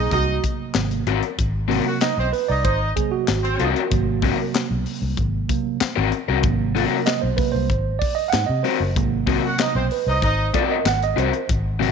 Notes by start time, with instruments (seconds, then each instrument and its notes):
Already playing: tine electric piano C3 F#3 A#3 G#4
0.11 fingered electric bass C2, horn section D#4 D#5, tine electric piano F#4, kick, closed hi-hat
0.44 kick, closed hi-hat
0.75 fingered electric bass G#1, tine electric piano C3 F#3 A#3, snare, clap, closed hi-hat
0.91 closed hi-hat
1.07 fingered electric bass G#1, overdriven electric guitar C4 F#4 A#4, closed hi-hat
1.23 closed hi-hat
1.38 fingered electric bass G#1, kick, closed hi-hat
1.68 tine electric piano C3 F#3 A#3, overdriven electric guitar C4 F#4 A#4, open hi-hat
1.86 horn section F#4 F#5
2.01 horn section D#4 D#5, tine electric piano D#5, snare, clap, closed hi-hat
2.18 fingered electric bass B1, horn section C4 C5
2.33 tine electric piano B4, open hi-hat
2.48 fingered electric bass C2, horn section D#4 D#5, tine electric piano D5
2.64 fingered electric bass G#1, horn section D#4 D#5, tine electric piano C5, kick, closed hi-hat
2.95 tine electric piano C3 F#3 A#3 G#4, kick, closed hi-hat
3.11 tine electric piano F#4
3.28 fingered electric bass G#1, snare, clap, closed hi-hat
3.43 horn section C4 C5, closed hi-hat
3.60 fingered electric bass C2, overdriven electric guitar C4 F#4 A#4, closed hi-hat
3.76 closed hi-hat
3.90 fingered electric bass G#1, tine electric piano C3 F#3 A#3, kick, closed hi-hat
4.22 overdriven electric guitar C4 F#4 A#4, kick, open hi-hat
4.54 snare, clap, closed hi-hat
4.71 fingered electric bass B1
4.86 open hi-hat
5.02 fingered electric bass C2
5.17 fingered electric bass G#1, kick, closed hi-hat
5.48 tine electric piano C3 F#3 A#3, kick, closed hi-hat
5.81 muted fingered electric bass stroke, snare, clap, closed hi-hat
5.96 fingered electric bass G#1, overdriven electric guitar C4 F#4 A#4
6.12 closed hi-hat
6.28 fingered electric bass C2, overdriven electric guitar C4 F#4 A#4
6.42 fingered electric bass G#1, tine electric piano C3 F#3 A#3, kick, closed hi-hat
6.75 overdriven electric guitar C4 F#4 A#4, open hi-hat
7.06 tine electric piano D#5, snare, clap, closed hi-hat
7.21 fingered electric bass B1, tine electric piano C5
7.37 tine electric piano C3 F#3 A#3 B4, kick, open hi-hat
7.52 fingered electric bass C2, tine electric piano C5
7.70 fingered electric bass G#1, kick, closed hi-hat
7.99 tine electric piano D5, kick, open hi-hat
8.15 tine electric piano D#5
8.28 tine electric piano F5 F#5
8.33 fingered electric bass G#2, snare, clap, closed hi-hat
8.46 fingered electric bass C3, tine electric piano D#5
8.63 overdriven electric guitar C4 F#4 A#4, tine electric piano C5, open hi-hat
8.80 fingered electric bass F#1
8.96 fingered electric bass G#1, tine electric piano C3 F#3 A#3, kick, closed hi-hat
9.27 overdriven electric guitar C4 F#4 A#4, kick, open hi-hat
9.46 horn section F#4 F#5
9.59 horn section D#4 D#5, tine electric piano D#5, snare, clap, closed hi-hat
9.75 fingered electric bass B1, horn section C4 C5, tine electric piano C5
9.91 tine electric piano B4, open hi-hat
10.07 fingered electric bass C2, horn section D#4 D#5, tine electric piano C5
10.22 fingered electric bass G#1, horn section D#4 D#5, kick, closed hi-hat
10.54 overdriven electric guitar C4 F#4 A#4, tine electric piano D5, kick, closed hi-hat
10.71 tine electric piano D#5
10.85 fingered electric bass G#1, tine electric piano F#5, snare, clap, closed hi-hat
11.03 tine electric piano D#5, closed hi-hat
11.16 fingered electric bass C2, overdriven electric guitar C4 F#4 A#4, tine electric piano C5, closed hi-hat
11.33 closed hi-hat
11.49 fingered electric bass G#1, kick, closed hi-hat
11.80 tine electric piano A#2 C3 F#3, overdriven electric guitar C4 F#4 A#4, open hi-hat